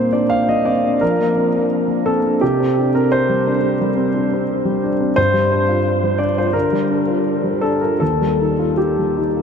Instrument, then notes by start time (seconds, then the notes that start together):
grand piano
Already playing: A#2 A#3 C4 C5
0.13 D4 D5
0.30 F5
0.49 A#3 D#5
0.65 C4 D5
0.84 D4
1.01 F3 A#4
1.20 A#3
1.37 C4
1.56 D4
1.88 A#3
2.06 C4 A4
2.23 D4
2.41 C3 G4
2.60 C4
2.78 D4
2.95 C4 A#4
3.12 C5
3.29 G3
3.47 D4
3.62 C4
3.81 G3
3.97 C4
4.14 D4
4.33 C4
4.65 G3
4.84 D4
5.01 C4
5.16 G2 C5
5.34 G3
5.51 D4
5.68 F4
6.03 G3
6.18 D4 D5
6.38 F4 C5
6.47 C5
6.53 D3 A#4
6.72 G3
6.91 D4
7.08 F4
7.44 G3
7.61 D4 A4
7.81 F4 A#4
8.00 D#2 A4
8.22 G3
8.41 D#4
8.59 F4
8.77 G4
8.98 G3
9.17 D#4
9.36 F4